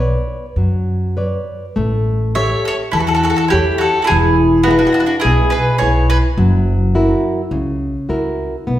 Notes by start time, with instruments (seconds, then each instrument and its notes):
Already playing: upright bass B1, nylon-string guitar B4
0.00 nylon-string guitar C#5 D5
0.56 upright bass F#2, nylon-string guitar F#3
1.17 nylon-string guitar B4 C#5 D5
1.76 upright bass A1, nylon-string guitar A3
2.35 nylon-string guitar G4 A4 C#5, mandolin C#5 E5
2.65 mandolin A4 C#5
2.92 upright bass E2, nylon-string guitar E3, mandolin E4 A4
2.99 mandolin F#4 A4
3.07 mandolin F#4 A4
3.15 mandolin F#4 A4
3.23 mandolin F#4 A4
3.30 mandolin F#4 A4
3.36 mandolin F#4 A4
3.48 mandolin E4 G4
3.52 upright bass E2, nylon-string guitar G4 A4 C#5
3.78 mandolin F#4 A4
4.02 mandolin E4 F#4 A4
4.07 nylon-string guitar E3, mandolin G#4
4.11 upright bass E1
4.63 mandolin B3 F#4, nylon-string guitar E4
4.68 mandolin D4 F#4, nylon-string guitar G#4 B4
4.79 mandolin D4 F#4
4.85 mandolin D4 F#4
4.92 mandolin D4 F#4
4.99 mandolin D4 F#4
5.06 mandolin D4 F#4
5.20 mandolin E4 G#4
5.24 upright bass B1, nylon-string guitar B2
5.50 mandolin G#4 B4
5.78 upright bass B1, nylon-string guitar E4 G#4, mandolin G#4 C#5
5.83 nylon-string guitar B4
6.10 mandolin G#4 B4
6.37 upright bass F#1, nylon-string guitar F#3
6.95 nylon-string guitar E4 F#4 A#4
7.51 upright bass C#2, nylon-string guitar C#3
8.09 upright bass C#2, nylon-string guitar E4 F#4 A#4
8.67 upright bass B1, nylon-string guitar B3